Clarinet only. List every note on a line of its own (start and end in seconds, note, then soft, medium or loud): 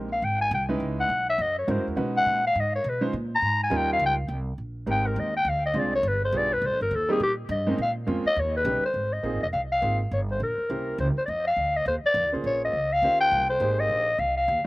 0.12 0.26 F5 loud
0.24 0.41 G5 medium
0.41 0.51 G#5 loud
0.54 0.64 G5 medium
1.00 1.26 F#5 loud
1.30 1.43 E5 loud
1.42 1.58 D#5 loud
1.59 1.73 C#5 medium
1.71 1.87 C5 medium
2.17 2.43 F#5 loud
2.47 2.62 F5 loud
2.60 2.75 D#5 medium
2.75 2.91 C#5 loud
2.89 3.05 B4 medium
3.35 3.60 A#5 loud
3.63 3.79 G#5 loud
3.77 3.92 G5 loud
3.93 4.02 F5 loud
4.06 4.15 G5 medium
4.91 5.08 G5 loud
5.07 5.21 A#4 medium
5.20 5.36 D#5 medium
5.37 5.50 G5 loud
5.49 5.65 F5 loud
5.66 5.80 D#5 loud
5.79 5.95 D5 medium
5.95 6.09 C#5 loud
6.08 6.24 B4 loud
6.25 6.39 C5 loud
6.37 6.55 D5 loud
6.53 6.68 B4 loud
6.66 6.82 C5 loud
6.82 6.96 A#4 medium
6.95 7.11 A4 medium
7.12 7.21 G#4 loud
7.23 7.33 G4 loud
7.51 7.77 D#5 medium
7.82 7.92 F5 loud
8.27 8.41 D#5 loud
8.40 8.56 C#5 loud
8.57 8.82 B4 loud
8.85 9.14 C5 medium
9.13 9.42 D#5 medium
9.43 9.48 D#5 medium
9.53 9.61 F5 medium
9.72 9.98 F5 loud
10.13 10.21 C#5 medium
10.31 10.41 C5 medium
10.43 10.96 A#4 medium
11.00 11.08 C5 medium
11.18 11.21 C5 medium
11.26 11.30 D5 medium
11.26 11.46 D#5 medium
11.47 11.78 F5 medium
11.77 11.87 D#5 loud
11.88 11.95 C5 medium
12.06 12.32 D5 loud
12.46 12.62 C#5 loud
12.65 12.94 D#5 loud
12.93 13.20 F5 loud
13.21 13.47 G5 loud
13.50 13.81 C5 loud
13.80 14.21 D#5 loud
14.20 14.36 F5 loud
14.37 14.64 F5 loud